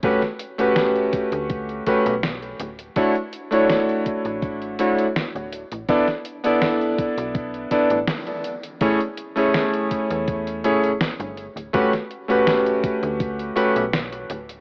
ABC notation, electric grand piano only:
X:1
M:4/4
L:1/16
Q:1/4=82
K:A
V:1 name="Electric grand piano"
[A,CF=GB] z2 [A,CFGB]6- [A,CFGB] [A,CFGB] z4 z | [A,DEFc] z2 [A,DEFc]6- [A,DEFc] [A,DEFc] z4 z | [B,DEAd] z2 [B,DEAd]6- [B,DEAd] [B,DEAd] z4 z | [A,CEGc] z2 [A,CEGc]6- [A,CEGc] [A,CEGc] z4 z |
[A,CF=GB] z2 [A,CFGB]6- [A,CFGB] [A,CFGB] z4 z |]